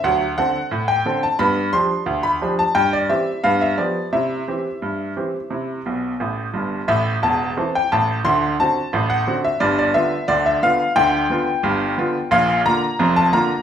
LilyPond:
<<
  \new Staff \with { instrumentName = "Upright piano" } { \time 2/4 \key g \mixolydian \tempo 4 = 88 fis''8 fis''8. g''8 a''16 | b''8 c'''8. b''8 a''16 | g''16 d''16 e''8 f''16 e''16 d''8 | e''2~ |
e''4 r4 | e''8 a''8. g''16 a''8 | c'''8 a''8. fis''8 e''16 | d''16 d''16 e''8 d''16 e''16 f''8 |
g''2 | \key bes \lydian f''8 bes''8. a''16 bes''8 | }
  \new Staff \with { instrumentName = "Upright piano" } { \clef bass \time 2/4 \key g \mixolydian <d, fis>8 <d c' a'>8 a,8 <d c' a'>8 | <g, b>8 <f d' g'>8 d,8 <f d' g'>8 | g,8 <e c' g'>8 <g, b>8 <f b g'>8 | <c e'>8 <e c' g'>8 g,8 <e c' g'>8 |
<c e'>8 <b,, b,>8 <a,, a,>8 <g,, g,>8 | <a,, a,>8 <e,, e,>8 <e c' a'>8 <a,, a,>8 | <d, d>8 <d c' fis'>8 <a,, a,>8 <d c' fis'>8 | <g,, g,>8 <d b f'>8 <d, d>8 <d b f'>8 |
<d, d>8 <d b f'>8 <g,, g,>8 <d b f'>8 | \key bes \lydian <bes,, bes,>8 <d bes f'>8 <f,, f,>8 <d bes f'>8 | }
>>